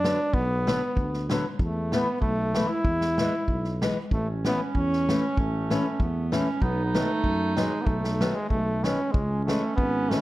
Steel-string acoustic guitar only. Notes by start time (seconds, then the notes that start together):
0.04 D3 F#3 B3
0.67 D3 F#3 B3
1.31 D3 F#3 B3
1.93 E3 A3 B3
2.55 E3 A3 B3
3.20 E3 G#3 B3
3.83 E3 G#3 B3
4.46 E3 A3 C#4
5.09 E3 A3 C#4
5.71 E3 A3 C#4
6.32 E3 A3 C#4
6.95 D#3 F#3 B3
7.56 D#3 F#3 B3
8.21 D#3 F#3 B3
8.85 D#3 F#3 B3
9.48 E3 G#3 C#4
10.12 E3 G#3 C#4